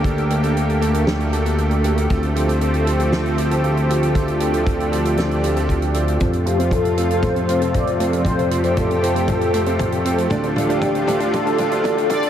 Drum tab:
HH |xxxxxxxxxxxxxxxx|xxxxxxxxxxxxxxxx|xxxxxxxxxxxxxxxx|xxxxxxxxxxxxxxxx|
SD |--------o-------|--------o-------|--------o-------|----------------|
T2 |----------------|----------------|----------------|o---o---o---o---|
BD |o---------------|o---------------|o---o-------o---|o---o---o---o---|

HH |xxxxxxxxxxxxxxxx|xxxxxxxxxxxxxxxx|
SD |----------------|----------------|
T2 |o---o---o---o---|o-o-o-o-o-o-o-o-|
BD |o---o---o---o---|o---o---o---o---|